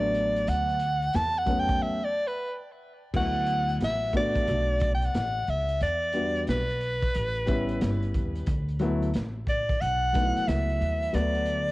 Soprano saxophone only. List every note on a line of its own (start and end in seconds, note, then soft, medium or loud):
0.00 0.50 D5 medium
0.48 1.17 F#5 loud
1.16 1.40 A5 loud
1.39 1.61 F#5 loud
1.60 1.84 G5 loud
1.82 2.06 E5 loud
2.04 2.29 D5 medium
2.27 2.60 B4 medium
3.16 3.78 F#5 loud
3.84 4.13 E5 loud
4.17 4.91 D5 loud
4.94 5.07 G5 medium
5.05 5.51 F#5 loud
5.50 5.82 E5 medium
5.83 6.44 D5 loud
6.50 8.11 B4 medium
9.49 9.83 D5 medium
9.81 10.49 F#5 loud
10.47 11.16 E5 medium
11.15 11.72 D5 medium